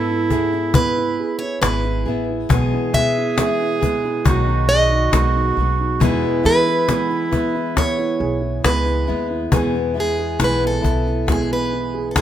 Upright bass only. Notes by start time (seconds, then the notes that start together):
Already playing: G#2
1.62 G#1
2.06 A1
2.49 B1
2.93 B2
4.25 B1
5.12 B1
5.57 B1
6.01 E2
6.45 E3
8.20 B1
8.64 C#2
9.09 D#2
9.53 E2
10.40 B1
10.83 B1